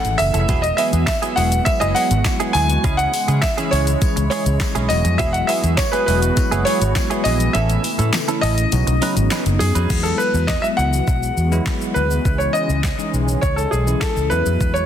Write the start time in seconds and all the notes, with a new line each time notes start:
Already playing: C#3 E3 A3 C#4 E4 A4 F#5
0.04 G#1, muted clean electric guitar stroke, closed hi-hat, shaker
0.18 F#1 E5, muted clean electric guitar stroke, open hi-hat, tambourine, shaker
0.34 F1 A3 C#4 E4 A4, closed hi-hat, shaker
0.49 E1 F#3 G#3 B3 E4 F#4 G#4, kick, closed hi-hat, tambourine, shaker
0.62 D#5, muted clean electric guitar stroke, closed hi-hat, shaker
0.77 F#3 B3 E4 G#4 E5, open hi-hat, tambourine, shaker
0.93 E2 F#3 B3 E4 G#4, closed hi-hat, shaker
1.06 E5, kick, snare, clap, closed hi-hat, tambourine, shaker
1.22 F#3 B3 E4 G#4, closed hi-hat, shaker
1.36 E1 F#3 G#3 B3 E4 F#4 G#4 F#5, open hi-hat, tambourine, shaker
1.52 closed hi-hat, shaker
1.65 F#3 G#3 B3 E4 G#4 E5, muted clean electric guitar stroke, kick, closed hi-hat, tambourine, shaker
1.80 F#1 F#3 B3 E4 G#4 D#5, closed hi-hat, shaker
1.95 F#3 B3 E4 G#4 F#5, open hi-hat, tambourine, shaker
2.10 G#1, muted clean electric guitar stroke, closed hi-hat, shaker
2.25 F#3 G#3 B3 E4 F#4, muted clean electric guitar stroke, kick, snare, clap, closed hi-hat, tambourine, shaker
2.40 F#3 B3 E4 G#4, closed hi-hat, shaker
2.53 D2 F#3 B3 E4 G#4 G#5, open hi-hat, tambourine, shaker
2.69 muted clean electric guitar stroke, closed hi-hat, shaker
2.84 C#2 C#3 G#3 C#4 E4 G#4, kick, closed hi-hat, shaker
2.97 F#5, closed hi-hat, shaker
3.13 muted clean electric guitar stroke, open hi-hat, tambourine, shaker
3.28 C#3 G#3 C#4 E4 G#4, closed hi-hat, shaker
3.42 E5, kick, snare, clap, closed hi-hat, tambourine, shaker
3.57 E3 G#3 C#4 E4 G#4, closed hi-hat, shaker
3.71 C#2 G#3 C#4 E4 G#4 C#5, open hi-hat, tambourine, shaker
3.87 muted clean electric guitar stroke, closed hi-hat, shaker
4.02 E3 G#3 C#4 E4 G#4, kick, closed hi-hat, tambourine, shaker
4.16 C#2, muted clean electric guitar stroke, closed hi-hat, shaker
4.30 E3 G#3 C#4 E4 G#4 C#5, open hi-hat, tambourine, shaker
4.46 C#2, muted clean electric guitar stroke, closed hi-hat, shaker
4.60 muted clean electric guitar stroke, kick, snare, clap, closed hi-hat, tambourine, shaker
4.75 B1 G#3 C#4 E4 G#4, closed hi-hat, shaker
4.89 E1 E3 F#3 G#3 B3 E4 F#4 D#5, muted clean electric guitar stroke, open hi-hat, tambourine, shaker
5.04 F2, muted clean electric guitar stroke, closed hi-hat, shaker
5.18 E1 F#3 B3 E4 G#4 E5, kick, closed hi-hat, tambourine, shaker
5.33 F#5, muted clean electric guitar stroke, closed hi-hat, shaker
5.47 F#3 B3 E4 G#4 E5, open hi-hat, tambourine, shaker
5.63 E2 F#3 B3 E4 G#4, closed hi-hat, shaker
5.77 C#5, kick, snare, clap, closed hi-hat, tambourine, shaker
5.92 F#3 B3 E4 G#4 B4, closed hi-hat, shaker
6.06 E1 F#3 G#3 B3 E4 F#4 G#4 B4, open hi-hat, tambourine, shaker
6.22 muted clean electric guitar stroke, closed hi-hat, shaker
6.37 F#3 G#3 B3 E4 F#4, muted clean electric guitar stroke, kick, closed hi-hat, tambourine, shaker
6.51 F#1 F#3 B3 E4 G#4, closed hi-hat, shaker
6.65 F#3 B3 E4 G#4 C#5, open hi-hat, tambourine, shaker
6.81 G#1, closed hi-hat, shaker
6.95 F#3 G#3 B3 E4 F#4, muted clean electric guitar stroke, kick, snare, clap, closed hi-hat, tambourine, shaker
7.10 F#3 B3 E4 G#4, closed hi-hat, shaker
7.24 A#1 F#3 B3 E4 G#4 D#5, open hi-hat, tambourine, shaker
7.40 closed hi-hat, shaker
7.53 A1 C#3 A3 C#4 E4 A4 E5, closed hi-hat, tambourine, shaker
7.70 closed hi-hat, shaker
7.84 muted clean electric guitar stroke, open hi-hat, tambourine, shaker
7.99 A2 A3 C#4 E4 A4, closed hi-hat, shaker
8.13 snare, clap, closed hi-hat, tambourine, shaker
8.28 E3 A3 C#4 E4 A4, closed hi-hat, shaker
8.41 A1 A3 C#4 E4 A4 D#5, open hi-hat, tambourine, shaker
8.58 closed hi-hat, shaker
8.72 B1 F#3 B3 C#4 D#4 F#4, closed hi-hat, tambourine, shaker
8.87 B1, muted clean electric guitar stroke, closed hi-hat, shaker
9.02 F#3 B3 C#4 D#4 F#4 B4, open hi-hat, tambourine, shaker
9.16 G#1, muted clean electric guitar stroke, closed hi-hat, shaker
9.31 F#3 C#4 D#4 B4, snare, clap, closed hi-hat, tambourine, shaker
9.46 F#1, muted clean electric guitar stroke, closed hi-hat, shaker
9.59 F#2 G#4, muted clean electric guitar stroke, open hi-hat, tambourine, shaker
9.75 F2 F#3 C#4 D#4 B4, closed hi-hat, shaker
9.90 E2 E3 F#3 G#3 B3 E4 F#4, kick, crash, shaker
10.03 A4, shaker
10.18 B4, shaker
10.34 E2, shaker
10.47 D#5, kick, snare, clap, shaker
10.62 F#3 G#3 B3 E4 E5, shaker
10.77 C#2 F#5, shaker
10.93 shaker
11.08 B1, kick, shaker
11.23 shaker
11.37 E2, shaker
11.52 F#3 G#3 B3 E4, shaker
11.66 kick, snare, clap, shaker
11.81 shaker
11.94 D2 B4, shaker
12.11 shaker
12.25 C#2 C#3 E3 G#3 C#4 E4, kick, shaker
12.38 C#5, shaker
12.53 D#5, shaker
12.69 C#2, shaker
12.83 kick, snare, clap, shaker
12.99 E3 G#3 C#4 D#4, shaker
13.14 B1, shaker
13.28 shaker
13.41 C#2 C#5, kick, shaker
13.56 A4, shaker
13.71 B1 G#4, shaker
13.87 E3 G#3 C#4 E4, shaker
14.00 A4, kick, snare, clap, shaker
14.16 C#2, shaker
14.30 E2 F#3 G#3 B3 E4 F#4 B4, shaker
14.46 F2, shaker
14.61 E2, kick, shaker
14.74 C#5, shaker